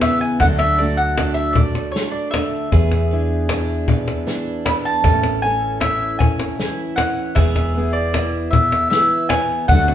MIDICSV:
0, 0, Header, 1, 7, 480
1, 0, Start_track
1, 0, Tempo, 773196
1, 255, Time_signature, 3, 2, 24, 8
1, 6174, End_track
2, 0, Start_track
2, 0, Title_t, "Mandolin"
2, 0, Program_c, 0, 25
2, 11, Note_on_c, 0, 76, 86
2, 127, Note_off_c, 0, 76, 0
2, 130, Note_on_c, 0, 80, 89
2, 243, Note_off_c, 0, 80, 0
2, 249, Note_on_c, 0, 78, 99
2, 282, Note_off_c, 0, 78, 0
2, 363, Note_on_c, 0, 76, 84
2, 487, Note_on_c, 0, 74, 78
2, 492, Note_off_c, 0, 76, 0
2, 602, Note_off_c, 0, 74, 0
2, 604, Note_on_c, 0, 78, 89
2, 831, Note_off_c, 0, 78, 0
2, 833, Note_on_c, 0, 76, 83
2, 950, Note_on_c, 0, 74, 76
2, 968, Note_off_c, 0, 76, 0
2, 1187, Note_off_c, 0, 74, 0
2, 1190, Note_on_c, 0, 73, 70
2, 1311, Note_off_c, 0, 73, 0
2, 1313, Note_on_c, 0, 74, 73
2, 1430, Note_off_c, 0, 74, 0
2, 1432, Note_on_c, 0, 76, 81
2, 2618, Note_off_c, 0, 76, 0
2, 2890, Note_on_c, 0, 83, 96
2, 2923, Note_off_c, 0, 83, 0
2, 3013, Note_on_c, 0, 81, 97
2, 3349, Note_off_c, 0, 81, 0
2, 3366, Note_on_c, 0, 80, 94
2, 3601, Note_off_c, 0, 80, 0
2, 3604, Note_on_c, 0, 76, 91
2, 3832, Note_off_c, 0, 76, 0
2, 3842, Note_on_c, 0, 80, 99
2, 4303, Note_off_c, 0, 80, 0
2, 4320, Note_on_c, 0, 78, 88
2, 4563, Note_on_c, 0, 76, 95
2, 4575, Note_off_c, 0, 78, 0
2, 4920, Note_off_c, 0, 76, 0
2, 4922, Note_on_c, 0, 74, 87
2, 5264, Note_off_c, 0, 74, 0
2, 5281, Note_on_c, 0, 76, 84
2, 5518, Note_off_c, 0, 76, 0
2, 5525, Note_on_c, 0, 76, 87
2, 5766, Note_off_c, 0, 76, 0
2, 5768, Note_on_c, 0, 80, 94
2, 6008, Note_off_c, 0, 80, 0
2, 6010, Note_on_c, 0, 78, 100
2, 6174, Note_off_c, 0, 78, 0
2, 6174, End_track
3, 0, Start_track
3, 0, Title_t, "Twelve-string acoustic guitar"
3, 0, Program_c, 1, 25
3, 0, Note_on_c, 1, 52, 74
3, 0, Note_on_c, 1, 64, 61
3, 0, Note_on_c, 1, 68, 69
3, 15, Note_on_c, 1, 59, 60
3, 251, Note_off_c, 1, 52, 0
3, 254, Note_on_c, 1, 54, 73
3, 256, Note_off_c, 1, 68, 0
3, 259, Note_on_c, 1, 69, 65
3, 302, Note_off_c, 1, 59, 0
3, 302, Note_off_c, 1, 64, 0
3, 493, Note_on_c, 1, 57, 52
3, 733, Note_on_c, 1, 62, 56
3, 964, Note_off_c, 1, 57, 0
3, 972, Note_on_c, 1, 57, 56
3, 1207, Note_off_c, 1, 62, 0
3, 1215, Note_on_c, 1, 62, 58
3, 1445, Note_off_c, 1, 57, 0
3, 1452, Note_on_c, 1, 57, 55
3, 1688, Note_off_c, 1, 57, 0
3, 1690, Note_on_c, 1, 59, 74
3, 1692, Note_off_c, 1, 69, 0
3, 1694, Note_off_c, 1, 54, 0
3, 1694, Note_on_c, 1, 68, 62
3, 1742, Note_off_c, 1, 62, 0
3, 1922, Note_off_c, 1, 59, 0
3, 1930, Note_on_c, 1, 59, 54
3, 2172, Note_on_c, 1, 62, 55
3, 2405, Note_off_c, 1, 59, 0
3, 2412, Note_on_c, 1, 59, 53
3, 2641, Note_off_c, 1, 62, 0
3, 2648, Note_on_c, 1, 62, 62
3, 2882, Note_off_c, 1, 59, 0
3, 2889, Note_on_c, 1, 59, 58
3, 3127, Note_off_c, 1, 59, 0
3, 3130, Note_off_c, 1, 68, 0
3, 3130, Note_on_c, 1, 61, 78
3, 3133, Note_on_c, 1, 69, 69
3, 3179, Note_off_c, 1, 62, 0
3, 3363, Note_off_c, 1, 61, 0
3, 3370, Note_on_c, 1, 61, 55
3, 3612, Note_on_c, 1, 64, 60
3, 3843, Note_off_c, 1, 61, 0
3, 3850, Note_on_c, 1, 61, 55
3, 4083, Note_off_c, 1, 64, 0
3, 4091, Note_on_c, 1, 64, 57
3, 4321, Note_off_c, 1, 61, 0
3, 4329, Note_on_c, 1, 61, 65
3, 4568, Note_off_c, 1, 61, 0
3, 4570, Note_on_c, 1, 59, 82
3, 4572, Note_off_c, 1, 69, 0
3, 4574, Note_on_c, 1, 68, 66
3, 4621, Note_off_c, 1, 64, 0
3, 4800, Note_off_c, 1, 59, 0
3, 4808, Note_on_c, 1, 59, 59
3, 5048, Note_on_c, 1, 64, 61
3, 5286, Note_off_c, 1, 59, 0
3, 5293, Note_on_c, 1, 59, 59
3, 5526, Note_off_c, 1, 64, 0
3, 5534, Note_on_c, 1, 64, 59
3, 5767, Note_off_c, 1, 59, 0
3, 5774, Note_on_c, 1, 59, 64
3, 6010, Note_off_c, 1, 59, 0
3, 6012, Note_on_c, 1, 57, 81
3, 6015, Note_off_c, 1, 68, 0
3, 6018, Note_on_c, 1, 66, 66
3, 6063, Note_off_c, 1, 64, 0
3, 6174, Note_off_c, 1, 57, 0
3, 6174, Note_off_c, 1, 66, 0
3, 6174, End_track
4, 0, Start_track
4, 0, Title_t, "Steel-string acoustic guitar"
4, 0, Program_c, 2, 25
4, 0, Note_on_c, 2, 40, 67
4, 0, Note_on_c, 2, 59, 55
4, 0, Note_on_c, 2, 64, 59
4, 22, Note_on_c, 2, 49, 55
4, 231, Note_off_c, 2, 59, 0
4, 234, Note_off_c, 2, 64, 0
4, 256, Note_off_c, 2, 49, 0
4, 257, Note_off_c, 2, 40, 0
4, 259, Note_on_c, 2, 50, 69
4, 266, Note_on_c, 2, 54, 56
4, 269, Note_on_c, 2, 57, 58
4, 272, Note_on_c, 2, 62, 58
4, 278, Note_on_c, 2, 66, 60
4, 498, Note_off_c, 2, 57, 0
4, 505, Note_off_c, 2, 66, 0
4, 505, Note_on_c, 2, 57, 58
4, 508, Note_off_c, 2, 62, 0
4, 510, Note_on_c, 2, 62, 56
4, 513, Note_on_c, 2, 66, 64
4, 1216, Note_off_c, 2, 50, 0
4, 1460, Note_on_c, 2, 50, 58
4, 1671, Note_off_c, 2, 54, 0
4, 1674, Note_off_c, 2, 66, 0
4, 1695, Note_on_c, 2, 40, 69
4, 1697, Note_off_c, 2, 50, 0
4, 1699, Note_off_c, 2, 57, 0
4, 1714, Note_off_c, 2, 62, 0
4, 1941, Note_on_c, 2, 62, 61
4, 1945, Note_on_c, 2, 64, 65
4, 2179, Note_off_c, 2, 64, 0
4, 2181, Note_on_c, 2, 64, 70
4, 2650, Note_on_c, 2, 52, 64
4, 3108, Note_off_c, 2, 62, 0
4, 3133, Note_off_c, 2, 40, 0
4, 3136, Note_on_c, 2, 45, 71
4, 3382, Note_on_c, 2, 61, 58
4, 3385, Note_off_c, 2, 64, 0
4, 3388, Note_on_c, 2, 64, 61
4, 3391, Note_on_c, 2, 69, 62
4, 3619, Note_off_c, 2, 64, 0
4, 3622, Note_on_c, 2, 64, 62
4, 4093, Note_off_c, 2, 52, 0
4, 4102, Note_on_c, 2, 52, 64
4, 4547, Note_off_c, 2, 45, 0
4, 4550, Note_off_c, 2, 61, 0
4, 4550, Note_off_c, 2, 64, 0
4, 4554, Note_off_c, 2, 69, 0
4, 4587, Note_on_c, 2, 40, 72
4, 4826, Note_on_c, 2, 59, 60
4, 4828, Note_on_c, 2, 64, 65
4, 4833, Note_on_c, 2, 68, 68
4, 5059, Note_off_c, 2, 64, 0
4, 5067, Note_on_c, 2, 64, 59
4, 5538, Note_off_c, 2, 52, 0
4, 5546, Note_on_c, 2, 52, 67
4, 5993, Note_off_c, 2, 59, 0
4, 5993, Note_off_c, 2, 64, 0
4, 5997, Note_off_c, 2, 68, 0
4, 6019, Note_on_c, 2, 50, 74
4, 6021, Note_off_c, 2, 52, 0
4, 6023, Note_off_c, 2, 40, 0
4, 6023, Note_on_c, 2, 54, 61
4, 6028, Note_on_c, 2, 57, 63
4, 6033, Note_on_c, 2, 62, 62
4, 6038, Note_on_c, 2, 66, 66
4, 6174, Note_off_c, 2, 50, 0
4, 6174, Note_off_c, 2, 54, 0
4, 6174, Note_off_c, 2, 57, 0
4, 6174, Note_off_c, 2, 62, 0
4, 6174, Note_off_c, 2, 66, 0
4, 6174, End_track
5, 0, Start_track
5, 0, Title_t, "Fingered electric bass"
5, 0, Program_c, 3, 33
5, 253, Note_on_c, 3, 38, 85
5, 1188, Note_off_c, 3, 38, 0
5, 1691, Note_on_c, 3, 40, 89
5, 2628, Note_off_c, 3, 40, 0
5, 3131, Note_on_c, 3, 33, 85
5, 4068, Note_off_c, 3, 33, 0
5, 4573, Note_on_c, 3, 28, 88
5, 5510, Note_off_c, 3, 28, 0
5, 6017, Note_on_c, 3, 38, 87
5, 6174, Note_off_c, 3, 38, 0
5, 6174, End_track
6, 0, Start_track
6, 0, Title_t, "Cajon"
6, 9, Note_on_c, 9, 38, 96
6, 71, Note_off_c, 9, 38, 0
6, 248, Note_on_c, 9, 36, 95
6, 248, Note_on_c, 9, 38, 30
6, 310, Note_off_c, 9, 36, 0
6, 310, Note_off_c, 9, 38, 0
6, 367, Note_on_c, 9, 38, 78
6, 429, Note_off_c, 9, 38, 0
6, 729, Note_on_c, 9, 38, 94
6, 791, Note_off_c, 9, 38, 0
6, 966, Note_on_c, 9, 36, 95
6, 1028, Note_off_c, 9, 36, 0
6, 1087, Note_on_c, 9, 38, 73
6, 1149, Note_off_c, 9, 38, 0
6, 1330, Note_on_c, 9, 38, 31
6, 1392, Note_off_c, 9, 38, 0
6, 1451, Note_on_c, 9, 38, 93
6, 1513, Note_off_c, 9, 38, 0
6, 1569, Note_on_c, 9, 38, 28
6, 1631, Note_off_c, 9, 38, 0
6, 1690, Note_on_c, 9, 36, 95
6, 1690, Note_on_c, 9, 38, 31
6, 1752, Note_off_c, 9, 36, 0
6, 1752, Note_off_c, 9, 38, 0
6, 1810, Note_on_c, 9, 38, 76
6, 1872, Note_off_c, 9, 38, 0
6, 2167, Note_on_c, 9, 38, 93
6, 2229, Note_off_c, 9, 38, 0
6, 2409, Note_on_c, 9, 36, 96
6, 2471, Note_off_c, 9, 36, 0
6, 2531, Note_on_c, 9, 38, 73
6, 2593, Note_off_c, 9, 38, 0
6, 2652, Note_on_c, 9, 38, 30
6, 2714, Note_off_c, 9, 38, 0
6, 2892, Note_on_c, 9, 38, 100
6, 2954, Note_off_c, 9, 38, 0
6, 3129, Note_on_c, 9, 36, 103
6, 3129, Note_on_c, 9, 38, 31
6, 3191, Note_off_c, 9, 36, 0
6, 3191, Note_off_c, 9, 38, 0
6, 3249, Note_on_c, 9, 38, 76
6, 3312, Note_off_c, 9, 38, 0
6, 3608, Note_on_c, 9, 38, 94
6, 3670, Note_off_c, 9, 38, 0
6, 3852, Note_on_c, 9, 36, 94
6, 3914, Note_off_c, 9, 36, 0
6, 3970, Note_on_c, 9, 38, 80
6, 4032, Note_off_c, 9, 38, 0
6, 4092, Note_on_c, 9, 38, 29
6, 4154, Note_off_c, 9, 38, 0
6, 4332, Note_on_c, 9, 38, 98
6, 4394, Note_off_c, 9, 38, 0
6, 4568, Note_on_c, 9, 36, 103
6, 4568, Note_on_c, 9, 38, 33
6, 4630, Note_off_c, 9, 36, 0
6, 4630, Note_off_c, 9, 38, 0
6, 4692, Note_on_c, 9, 38, 79
6, 4754, Note_off_c, 9, 38, 0
6, 5054, Note_on_c, 9, 38, 95
6, 5116, Note_off_c, 9, 38, 0
6, 5296, Note_on_c, 9, 36, 93
6, 5358, Note_off_c, 9, 36, 0
6, 5415, Note_on_c, 9, 38, 76
6, 5478, Note_off_c, 9, 38, 0
6, 5533, Note_on_c, 9, 38, 30
6, 5595, Note_off_c, 9, 38, 0
6, 5773, Note_on_c, 9, 38, 100
6, 5835, Note_off_c, 9, 38, 0
6, 6016, Note_on_c, 9, 36, 94
6, 6016, Note_on_c, 9, 38, 30
6, 6078, Note_off_c, 9, 36, 0
6, 6078, Note_off_c, 9, 38, 0
6, 6134, Note_on_c, 9, 38, 72
6, 6174, Note_off_c, 9, 38, 0
6, 6174, End_track
7, 0, Start_track
7, 0, Title_t, "Drums"
7, 254, Note_on_c, 9, 36, 79
7, 256, Note_on_c, 9, 42, 50
7, 316, Note_off_c, 9, 36, 0
7, 318, Note_off_c, 9, 42, 0
7, 736, Note_on_c, 9, 42, 50
7, 798, Note_off_c, 9, 42, 0
7, 1216, Note_on_c, 9, 38, 63
7, 1216, Note_on_c, 9, 42, 51
7, 1278, Note_off_c, 9, 38, 0
7, 1278, Note_off_c, 9, 42, 0
7, 1692, Note_on_c, 9, 36, 93
7, 1694, Note_on_c, 9, 42, 45
7, 1755, Note_off_c, 9, 36, 0
7, 1756, Note_off_c, 9, 42, 0
7, 2169, Note_on_c, 9, 42, 47
7, 2231, Note_off_c, 9, 42, 0
7, 2653, Note_on_c, 9, 38, 68
7, 2653, Note_on_c, 9, 42, 46
7, 2715, Note_off_c, 9, 38, 0
7, 2715, Note_off_c, 9, 42, 0
7, 3132, Note_on_c, 9, 36, 90
7, 3132, Note_on_c, 9, 42, 49
7, 3194, Note_off_c, 9, 36, 0
7, 3194, Note_off_c, 9, 42, 0
7, 3610, Note_on_c, 9, 42, 45
7, 3672, Note_off_c, 9, 42, 0
7, 4094, Note_on_c, 9, 38, 71
7, 4094, Note_on_c, 9, 42, 50
7, 4156, Note_off_c, 9, 38, 0
7, 4156, Note_off_c, 9, 42, 0
7, 4574, Note_on_c, 9, 36, 96
7, 4576, Note_on_c, 9, 42, 51
7, 4636, Note_off_c, 9, 36, 0
7, 4638, Note_off_c, 9, 42, 0
7, 5055, Note_on_c, 9, 42, 50
7, 5117, Note_off_c, 9, 42, 0
7, 5534, Note_on_c, 9, 38, 68
7, 5534, Note_on_c, 9, 42, 54
7, 5596, Note_off_c, 9, 38, 0
7, 5596, Note_off_c, 9, 42, 0
7, 6012, Note_on_c, 9, 42, 52
7, 6015, Note_on_c, 9, 36, 88
7, 6074, Note_off_c, 9, 42, 0
7, 6077, Note_off_c, 9, 36, 0
7, 6174, End_track
0, 0, End_of_file